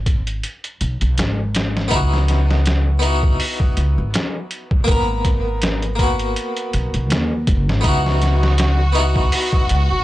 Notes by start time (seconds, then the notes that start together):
Already playing: G#1
0.06 kick, closed hi-hat
0.27 closed hi-hat
0.43 closed hi-hat
0.64 closed hi-hat
0.81 B1, closed hi-hat
1.01 B1, closed hi-hat
1.18 G#1, snare, closed hi-hat
1.55 snare, closed hi-hat
1.77 snare
1.88 C#2 B3 D#4, kick, closed hi-hat
1.93 E4 F#4
2.13 snare
2.28 snare, closed hi-hat
2.50 snare
2.65 snare, closed hi-hat
2.99 B3 D#4, closed hi-hat
3.04 E4 F#4
3.23 kick
3.40 open hi-hat
3.60 kick
3.77 C#2, closed hi-hat
3.98 G#1
4.14 snare, closed hi-hat
4.51 closed hi-hat
4.71 kick
4.84 G#1 A#3 B3, kick, closed hi-hat
4.92 A#4
5.25 kick, closed hi-hat
5.62 snare, closed hi-hat
5.83 closed hi-hat
5.96 A#3 B3, kick, closed hi-hat
6.03 F#4
6.20 closed hi-hat
6.36 closed hi-hat
6.57 closed hi-hat
6.73 B1, closed hi-hat
6.94 B1, closed hi-hat
7.10 D#2, snare, closed hi-hat
7.47 F#1, kick, closed hi-hat
7.68 G#1, snare
7.81 C#2 B3 D#4 F#4, kick, closed hi-hat
7.86 E4 F#4
8.07 snare
8.22 snare, closed hi-hat
8.43 snare
8.58 snare, closed hi-hat
8.92 B3 D#4, closed hi-hat
8.97 E4 F#4
9.16 kick
9.32 open hi-hat
9.53 kick
9.69 C#2, closed hi-hat
9.91 G#1